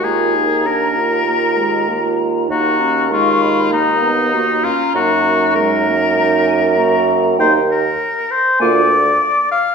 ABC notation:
X:1
M:4/4
L:1/8
Q:1/4=98
K:Ebm
V:1 name="Flute"
b8 | b2 d' c' b z b2- | b4 b a b2 | [K:Eb] g z3 a z3 |]
V:2 name="Oboe"
A2 B4- B z | G2 F2 E3 F | G2 B4- B z | [K:Eb] c B2 c d3 f |]
V:3 name="Clarinet"
F E =D F3 F2 | E D E3 z G D | E4 E2 G2 | [K:Eb] E z3 F z3 |]
V:4 name="French horn"
B,4 B, A, B,2 | B,2 A,2 B, C B, z | B,2 A, B,3 B,2 | [K:Eb] B, z3 B, z3 |]
V:5 name="Bassoon" clef=bass
E,,8 | E,,6- E,, z | G,,8 | [K:Eb] E,,2 z2 D,,2 z2 |]